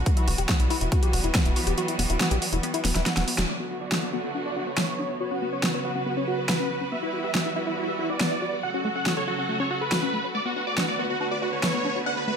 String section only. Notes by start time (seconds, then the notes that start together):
Already playing: F#4
0.06 E3 F#3 G3 B3
3.49 D3 F#3 A3 B3 F#4
5.21 C#3 F#3 F#4 B4
6.92 E3 G3
8.63 C#3 F#3 A3 A4
10.35 D3 B3 B4